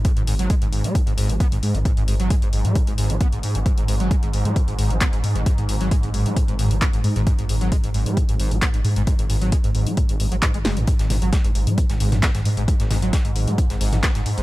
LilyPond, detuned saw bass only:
\new Staff \with { instrumentName = "Detuned saw bass" } { \clef bass \time 4/4 \key fis \dorian \tempo 4 = 133 r16 gis,,16 gis,,16 gis,,16 r16 gis,,16 gis,,16 gis,16 r16 gis,,16 gis,,16 gis,,16 r16 gis,,16 gis,16 gis,,16 | r16 gis,,16 gis,,16 gis,,16 r16 gis,,16 gis,,16 gis,16 r16 gis,,16 gis,,16 gis,,16 r16 gis,,16 gis,16 gis,,16 | r16 gis,,16 gis,,16 gis,,16 r16 gis,,16 gis,,16 gis,16 r16 gis,,16 gis,,16 gis,,16 r16 gis,,16 gis,16 gis,,16 | r16 gis,,16 gis,,16 gis,,16 r16 gis,,16 gis,,16 gis,16 r16 gis,,16 gis,,16 gis,,16 r16 gis,,16 gis,16 gis,,16 |
r16 gis,,16 gis,,16 gis,,16 r16 gis,,16 gis,,16 gis,16 r16 gis,,16 gis,,16 gis,,16 r16 gis,,16 gis,16 gis,,16 | r16 gis,,16 gis,,16 gis,,16 r16 gis,,16 gis,,16 gis,16 r16 gis,,16 gis,,16 gis,,16 r16 gis,,16 fis,,16 a,,16 | r16 gis,,16 gis,,16 gis,,16 r16 gis,,16 gis,,16 gis,16 r16 gis,,16 gis,,16 gis,,16 r16 gis,,16 gis,16 gis,,16 | r16 gis,,16 gis,,16 gis,,16 r16 gis,,16 gis,,16 gis,16 r16 gis,,16 gis,,16 gis,,16 r16 gis,,16 gis,16 gis,,16 | }